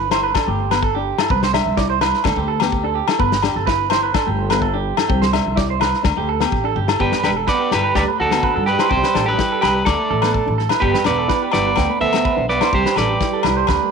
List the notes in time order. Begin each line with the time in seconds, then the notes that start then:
Already playing: G1 B4
0.11 E4 C5, snare, low agogo
0.23 B4
0.35 D4 A4, kick, snare, low agogo
0.47 G1 A3 G4
0.71 B3 B4, snare, low agogo
0.82 A4, kick
0.95 D4 G4
1.18 E4 A4, snare, low agogo
1.30 C2 C4 B4, kick
1.43 C5, snare
1.53 D4 E5, snare, low agogo
1.66 C2
1.77 E4 D5, kick, snare
1.90 C5
2.01 E4 B4, snare, low agogo
2.14 snare
2.24 D2 D4 A4, kick, snare, low agogo
2.36 D2 A3 G4
2.48 A4
2.60 B3 G4, snare, low agogo
2.72 kick
2.84 D4 A4
2.95 G4
3.08 E4 A4, snare, low agogo
3.19 G1 B3 B4, kick
3.32 snare
3.43 D4 G4, snare, low agogo
3.55 G1 A4
3.67 E4 B4, kick, snare
3.90 E4 C5, snare, low agogo
4.03 B4
4.14 D4 A4, kick, snare, low agogo
4.26 G1 A3 G4
4.50 B3 B4, snare, low agogo
4.62 A4, kick
4.74 D4 G4
4.97 E4 A4, snare, low agogo
5.09 C2 C4 G4, kick
5.22 C5, snare
5.33 D4 E5, snare, low agogo
5.46 C2
5.56 E4 D5, kick, snare
5.70 C5
5.80 E4 B4, snare, low agogo
5.94 snare
6.03 D2 D4, muted clean electric guitar stroke, kick, snare, low agogo
6.16 D2 A3 G4
6.29 A4
6.40 B3 G4, snare, low agogo
6.52 A1, kick
6.64 D4 A4
6.76 G1 G4, high tom
6.88 E4 A4, snare, low agogo
6.99 G1 G3 B3 G4 B4, kick
7.12 B4, snare
7.23 E1 G3 D4 G4 B4, snare, low agogo
7.36 A4
7.47 B3 B4 D5, muted clean electric guitar stroke, kick, snare
7.59 G4
7.71 G1 E4 G4 B4, snare, low agogo
7.76 G3
7.83 B4
7.95 D2 D4 G4 B4 D5, kick, snare, low agogo
8.02 G3
8.08 A3 B4
8.20 D2 F#4 A4
8.24 D3
8.31 B3, snare, low agogo
8.43 B4, kick
8.56 G2 A4, muted clean electric guitar stroke
8.66 G4 B4, snare
8.70 G3
8.79 E4 C5, snare, low agogo
8.89 C2 C4 G4 C5, kick
8.96 G3
9.03 B4, snare
9.14 A1 D4 A4, snare, low agogo
9.26 G4 B4
9.32 G3
9.38 E4, kick, snare
9.52 A4
9.61 C2 G4 B4, snare, low agogo
9.68 G3
9.75 muted clean electric guitar stroke
9.85 D2 D4 A4 D5, muted clean electric guitar stroke, kick, snare, low agogo
9.89 A3
9.99 A3
10.11 A1 A4
10.22 B3 B4, snare, low agogo
10.33 A4, kick
10.46 A1 D4
10.58 A4, snare
10.69 E4 B4, snare, low agogo
10.80 G1 G3 B3 G4 B4, kick
10.94 B4, snare
11.04 E1 B3 D4 B4 D5, snare, low agogo
11.18 A4
11.28 E4 B4, kick, snare
11.42 G4
11.51 G1 B3 E4 B4 D5, snare, low agogo
11.66 B4
11.76 D2 D4 G5, kick, snare, low agogo
11.89 A3 B4
12.00 D2 B3 A4 C5 E5
12.13 B3, snare, low agogo
12.25 B4, kick
12.36 B1 D4, muted clean electric guitar stroke
12.49 B3 B4 D5, snare
12.61 E4 C5, snare, low agogo
12.73 C2 G3 C4 G4 C5, kick
12.86 B4, snare
12.96 A1 G3 D4 A4 B4 D5, snare, low agogo
13.09 G4
13.21 E4, kick, snare
13.33 A4
13.43 C2 E4 B4, snare, low agogo
13.57 C5
13.67 D2 D4 B4, kick, snare, low agogo
13.83 A3